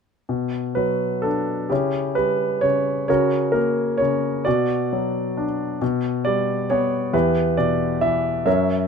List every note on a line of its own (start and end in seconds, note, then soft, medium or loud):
0.29 1.67 B2 soft
0.75 1.68 F#3 soft
0.75 1.25 B4 soft
1.22 1.69 D4 soft
1.22 1.71 A4 soft
1.69 2.61 C#3 soft
1.69 3.05 C#4 soft
1.69 3.05 E4 soft
1.69 2.13 G4 soft
2.15 3.06 G3 soft
2.15 2.64 B4 medium
2.61 3.07 C#3 soft
2.61 3.07 C#5 medium
3.08 3.99 C#3 soft
3.08 4.42 F#4 soft
3.08 3.50 A#4 soft
3.08 3.55 C#5 medium
3.52 4.43 A#3 soft
3.52 4.00 A#4 medium
3.98 4.45 C#3 soft
3.98 4.46 C#5 medium
4.45 5.78 B2 soft
4.45 5.77 F#4 soft
4.45 5.43 D5 medium
4.93 5.79 F#3 soft
5.37 5.80 D4 soft
5.82 7.10 B2 soft
6.25 7.11 G3 soft
6.25 6.66 D5 medium
6.70 7.13 B3 soft
6.70 7.15 C#5 medium
7.13 8.42 E2 soft
7.13 8.43 E4 soft
7.13 8.42 G4 soft
7.13 7.54 B4 medium
7.57 8.44 B2 soft
7.57 8.03 D5 medium
8.01 8.45 E3 soft
8.01 8.43 E5 medium
8.46 8.88 F#2 soft
8.46 8.88 A#4 soft
8.46 8.88 C#5 soft
8.46 8.88 E5 medium